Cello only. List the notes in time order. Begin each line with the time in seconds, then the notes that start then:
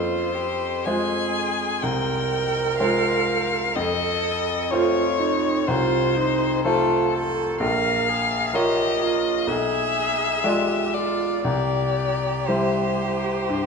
Already playing: F4
0.35 G4
0.87 G#4
1.84 A#4
3.77 A4
4.72 F4
5.19 D#4
5.68 F4
6.17 D#4
6.66 F4
7.13 A4
7.61 A#4
8.09 G#4
8.56 G4
9.03 F4
9.49 G#4
10.45 G4
10.95 F4
11.45 G4